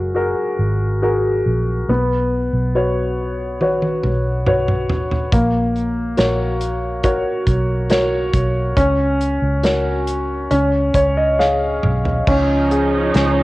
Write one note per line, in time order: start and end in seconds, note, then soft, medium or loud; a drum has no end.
0.00 0.33 F#1 medium
0.00 1.85 F#3 soft
0.00 0.12 F#4 soft
0.00 0.13 G#4 soft
0.00 0.13 A#4 soft
0.15 0.99 F#4 soft
0.15 1.00 G#4 soft
0.15 1.00 A#4 soft
0.59 1.42 G#1 medium
1.02 1.86 F#4 soft
1.02 1.86 G#4 soft
1.02 1.87 A#4 soft
1.46 1.86 A#1 medium
1.89 2.49 B1 medium
1.89 5.29 B3 medium
2.53 4.00 B1 medium
2.75 3.58 F#4 soft
2.75 3.58 B4 soft
2.75 3.59 C#5 soft
3.61 4.44 F#4 soft
3.61 4.44 B4 soft
3.61 4.45 C#5 soft
3.61 high tom soft
3.82 high tom soft
4.04 4.90 B1 medium
4.04 mid tom soft
4.46 5.30 F#4 soft
4.46 5.30 B4 soft
4.46 5.30 C#5 soft
4.46 mid tom medium
4.68 mid tom medium
4.90 5.29 G#1 medium
4.90 floor tom medium
5.11 floor tom medium
5.32 6.14 A#1 medium
5.32 8.73 A#3 medium
5.32 kick medium
5.32 closed hi-hat medium
5.76 closed hi-hat soft
6.17 7.22 A#1 medium
6.17 7.01 F#4 soft
6.17 7.01 A#4 soft
6.17 7.02 C#5 soft
6.17 snare medium
6.17 closed hi-hat medium
6.61 closed hi-hat medium
7.03 7.88 F#4 soft
7.03 7.88 A#4 soft
7.03 7.88 C#5 soft
7.03 kick medium
7.03 closed hi-hat medium
7.47 8.30 B1 medium
7.47 kick medium
7.47 closed hi-hat medium
7.90 8.74 F#4 soft
7.90 8.74 A#4 soft
7.90 8.75 C#5 soft
7.90 snare medium
7.90 closed hi-hat medium
8.33 8.74 B1 medium
8.33 kick medium
8.33 closed hi-hat medium
8.77 9.38 C#2 medium
8.77 10.47 C#4 medium
8.77 kick medium
8.77 closed hi-hat medium
9.21 closed hi-hat medium
9.42 10.47 C#2 medium
9.63 10.48 F#4 soft
9.63 10.48 A#4 soft
9.63 10.49 C#5 soft
9.63 snare medium
9.63 closed hi-hat medium
10.07 closed hi-hat medium
10.51 10.92 C#2 medium
10.51 12.24 C#4 medium
10.51 closed hi-hat medium
10.94 11.79 C#2 medium
10.94 11.15 C#5 soft
10.94 kick medium
10.94 closed hi-hat medium
11.17 11.38 D#5 soft
11.39 12.25 G#4 soft
11.39 12.25 C#5 soft
11.39 12.25 F5 soft
11.39 snare soft
11.83 12.25 B1 medium
11.83 mid tom medium
12.05 floor tom medium
12.27 13.11 C#2 medium
12.27 13.43 F3 medium
12.27 13.43 C#4 medium
12.27 13.13 C#4 medium
12.27 13.43 D#4 medium
12.27 kick medium
12.27 crash medium
12.71 13.43 G#4 soft
12.71 closed hi-hat medium
13.14 13.43 C#2 medium
13.14 13.43 C#4 soft
13.14 snare medium
13.14 closed hi-hat medium